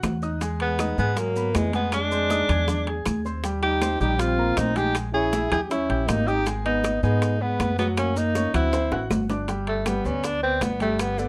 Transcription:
Already playing: grand piano F#4 F#5 F#6
0.03 upright bass E2, high bongo, low bongo, high conga, high timbale, low timbale, claves, maracas
0.22 grand piano D#4 D#5 D#6, high conga, maracas
0.41 grand piano G#3 G#4 G#5, high bongo, high timbale, maracas
0.60 trombone G#3, tenor saxophone B3, high conga, high timbale
0.79 grand piano D#4 D#5 D#6, high bongo, high conga, high timbale, claves, maracas
0.98 upright bass G#2, grand piano G#3 G#4 G#5, trombone G#3, tenor saxophone B3, high conga, maracas
1.17 trombone F#3, tenor saxophone A#3, high bongo, high conga, high timbale, maracas
1.36 grand piano B3 B4 B5, high conga, maracas
1.55 upright bass F2, trombone E3, tenor saxophone G#3, high bongo, low bongo, high conga, high timbale, low timbale, claves, maracas
1.73 grand piano G#3 G#4 G#5, trombone G#3, tenor saxophone B3, high conga, high timbale, maracas
1.92 trombone G#3, tenor saxophone D4, high bongo, high conga, high timbale, claves, maracas
2.11 grand piano C4 C5 C6, high bongo, high conga, maracas
2.30 grand piano D#4 D#5 D#6, high bongo, high conga, high timbale, maracas
2.49 upright bass E2, grand piano G#4 G#5 G#6, high bongo, low conga, high timbale, claves, maracas
2.68 grand piano D4 D5 D6, high bongo, high conga, low conga, maracas
2.87 grand piano G#4 G#5 G#6, high bongo, high conga, high timbale
3.06 upright bass D#2, high bongo, low bongo, high conga, high timbale, claves, maracas
3.25 grand piano C4 C5 C6, high conga, maracas
3.44 grand piano G3 G4 G5, high bongo, high conga, high timbale, maracas
3.63 trombone D#4, tenor saxophone G4, high conga, high timbale
3.82 grand piano C4 C5 C6, high bongo, high conga, high timbale, claves, maracas
4.00 upright bass A#1, grand piano G3 G4 G5, trombone D#4, tenor saxophone G4, high conga, maracas
4.19 trombone C4, tenor saxophone F4, high bongo, high conga, high timbale, maracas
4.38 grand piano A#3 A#4 A#5, high conga
4.57 upright bass A#1, trombone C4, tenor saxophone D#4, high bongo, low bongo, high conga, high timbale, low timbale, claves, maracas
4.76 grand piano G#3 G#4 G#5, trombone D#4, tenor saxophone G4, high conga, high timbale, maracas
4.95 high bongo, high conga, high timbale, claves, maracas
5.13 grand piano C#4 C#5 C#6, trombone E4, tenor saxophone G#4, high bongo, high conga
5.33 grand piano E4 E5 E6, high bongo, high conga, high timbale, maracas
5.51 upright bass D#2, trombone E4, grand piano G4 G5 G6, tenor saxophone G#4, high bongo, low conga, high timbale, claves, maracas
5.70 trombone C#4, grand piano C#4 C#5 C#6, tenor saxophone E4, high bongo, high conga, maracas
5.89 upright bass A#1, grand piano G4 G5 G6, high bongo, high conga, high timbale
6.08 upright bass G#1, trombone A#3, tenor saxophone D#4, high bongo, low bongo, high conga, high timbale, low timbale, claves, maracas
6.27 trombone D#4, grand piano D#4 D#5 D#6, tenor saxophone G4, high conga, maracas
6.46 grand piano G#3 G#4 G#5, high bongo, high conga, high timbale, maracas
6.65 trombone B3, tenor saxophone D#4, high conga, high timbale
6.84 grand piano D#4 D#5 D#6, high bongo, high conga, high timbale, claves, maracas
7.03 upright bass G#2, grand piano G#3 G#4 G#5, trombone B3, tenor saxophone D#4, high conga, maracas
7.22 high bongo, high conga, high timbale, maracas
7.41 trombone G#3, grand piano B3 B4 B5, tenor saxophone B3, high conga
7.60 upright bass F#2, high bongo, low bongo, high conga, high timbale, claves, maracas
7.78 grand piano F#3 F#4 F#5, trombone G#3, tenor saxophone B3, high conga, high timbale, maracas
7.97 trombone A#3, tenor saxophone C#4, high bongo, high conga, high timbale, claves, maracas
8.16 grand piano A#3 A#4 A#5, trombone A#3, tenor saxophone D#4, high bongo, high conga, maracas
8.35 grand piano C#4 C#5 C#6, high bongo, high conga, high timbale, maracas
8.54 upright bass D2, trombone C4, tenor saxophone E4, grand piano F#4 F#5 F#6, high bongo, low conga, high timbale, claves, maracas
8.73 grand piano C4 C5 C6, high bongo, high conga, high timbale, maracas
8.92 upright bass A1, grand piano F#4 F#5 F#6, high bongo, high conga, high timbale
9.10 upright bass G1, high bongo, high conga, low timbale, claves, maracas
9.29 grand piano D4 D5 D6, low bongo, low timbale, maracas
9.48 grand piano G3 G4 G5, high bongo, high conga, high timbale, maracas
9.67 tenor saxophone A3, high conga, high timbale
9.86 grand piano G3 G4 G5, tenor saxophone B3, high bongo, high conga, high timbale, claves, maracas
10.05 upright bass D2, grand piano B3 B4 D5, tenor saxophone C#4, high conga, maracas
10.24 tenor saxophone D4, high bongo, high conga, high timbale, maracas
10.43 grand piano B3 B4 D5, tenor saxophone C4, high conga
10.61 upright bass G1, tenor saxophone B3, high bongo, low bongo, high conga, high timbale, low timbale, claves, maracas
10.80 grand piano G3 G4 G5, tenor saxophone A3, high conga, high timbale, maracas
10.99 tenor saxophone B3, high bongo, high conga, high timbale, claves, maracas
11.18 tenor saxophone D3, grand piano B3 B4 D5, high bongo, high conga, maracas

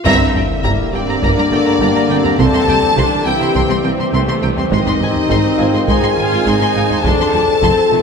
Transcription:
0.05 double bass section G1, tuba G1, cello section G2, trombone section D3 A#3, ambient pad D3 A#3 G4 D5, synth arpeggio sound G3, viola section C4, french horn section E4, violin section E5 A#5, felt piano E5, taiko, sub drop
0.20 cello section G2, synth arpeggio sound D4, violin section A#5, taiko low
0.35 double bass section G1, tuba G1, cello section G2, synth arpeggio sound D4, violin section G5, taiko low
0.50 taiko low
0.64 double bass section G1, tuba G1, cello section G2, synth arpeggio sound G3, viola section A#3, violin section A#5, taiko
0.93 tuba G1, double bass section G1, cello section G2, viola section C4, french horn section D4, synth arpeggio sound G4, violin section D5 G5
1.08 cello section G2, synth arpeggio sound G4, violin section A#5
1.22 double bass section G1, tuba G1, cello section G2, synth arpeggio sound G3, viola section A#3, violin section A#5, taiko
1.37 cello section G2, synth arpeggio sound D4, violin section A#5
1.51 double bass section G1, tuba G1, cello section G2, viola section A3, synth arpeggio sound A#3, violin section G5
1.65 cello section G2, synth arpeggio sound A#3, violin section A#5
1.80 double bass section G1, tuba G1, cello section G2, synth arpeggio sound G3, viola section A#3, violin section A#5
1.95 cello section G2, synth arpeggio sound D4, violin section A#5
2.09 double bass section G1, tuba G1, cello section G2, viola section C4, synth arpeggio sound G4, violin section G5
2.24 cello section G2, synth arpeggio sound D4, violin section A#5, taiko low
2.39 tuba C2, double bass section C2, synth arpeggio sound C3, cello section C3, ambient pad E3 C4 C5, trombone section E3 C4, viola section C4, french horn section A4, violin section A5 C6, taiko
2.53 cello section C3, synth arpeggio sound G3, violin section C6, taiko low
2.68 double bass section C2, tuba C2, cello section C3, synth arpeggio sound G3, violin section G5, taiko low
2.83 taiko low
2.97 double bass section C2, tuba C2, synth arpeggio sound C3, cello section C3, viola section D4, violin section C6, taiko
3.26 double bass section C2, tuba C2, cello section C3, synth arpeggio sound C4, viola section E4, french horn section G4, violin section G5
3.40 cello section C3, synth arpeggio sound C4, violin section C6
3.54 double bass section C2, tuba C2, cello section C3, synth arpeggio sound C3, viola section C4, felt piano C5, violin section C6, taiko
3.69 cello section C3, synth arpeggio sound G3, violin section C6
3.84 double bass section C2, tuba C2, cello section C3, synth arpeggio sound E3, violin section G5
3.98 cello section C3, synth arpeggio sound E3, violin section C6
4.13 double bass section C2, tuba C2, cello section C3, synth arpeggio sound C3, viola section A3, violin section C6
4.28 cello section C3, synth arpeggio sound G3, violin section C6
4.42 double bass section C2, tuba C2, cello section C3, synth arpeggio sound C4, violin section G5
4.57 cello section C3, synth arpeggio sound G3, violin section C6, taiko low
4.71 double bass section G#1, tuba G#1, cello section G#2, trombone section D#3, ambient pad D#3 G#4, viola section G#3, synth arpeggio sound G#3, french horn section D#4, violin section D#5 C6, taiko
4.86 cello section G#2, synth arpeggio sound D#4, violin section C6, taiko low
5.00 double bass section G#1, tuba G#1, cello section G#2, viola section C4, synth arpeggio sound D#4, violin section G#5, taiko low
5.15 taiko low
5.29 tuba G#1, double bass section G#1, cello section G#2, synth arpeggio sound G#3, violin section C6, taiko
5.58 tuba G#1, double bass section G#1, cello section G#2, felt piano F4 F5, synth arpeggio sound G#4, violin section G#5
5.73 cello section G#2, synth arpeggio sound G#4, violin section C6
5.87 tuba G#1, double bass section G#1, cello section G#2, synth arpeggio sound G#3, viola section D#4, french horn section G#4, violin section G#5 C6, taiko
6.02 cello section G#2, synth arpeggio sound D#4, violin section C6
6.17 tuba G#1, double bass section G#1, cello section G#2, synth arpeggio sound C4, viola section F4, violin section G#5
6.31 cello section G#2, synth arpeggio sound C4, violin section C6
6.46 tuba G#1, double bass section G#1, cello section G#2, synth arpeggio sound G#3, viola section D#4, violin section C6
6.61 cello section G#2, synth arpeggio sound D#4, violin section C6
6.75 tuba G#1, double bass section G#1, cello section G#2, synth arpeggio sound G#4, felt piano F5, violin section G#5
6.89 cello section G#2, synth arpeggio sound D#4, violin section C6, taiko low
7.04 tuba F1, double bass section F1, cello section F2, synth arpeggio sound F3, trombone section F3 C4, ambient pad F3 C4 A4 C5, viola section D4, french horn section A4, violin section A5 C6, taiko
7.18 cello section F2, synth arpeggio sound C4, violin section C6, taiko low
7.34 tuba F1, double bass section F1, cello section F2, synth arpeggio sound C4, violin section A5, taiko low
7.48 taiko low
7.62 double bass section F1, tuba F1, cello section F2, synth arpeggio sound F3, viola section C4, violin section C6, taiko
7.92 tuba F1, double bass section F1, cello section F2, viola section A3, synth arpeggio sound F4, violin section A5

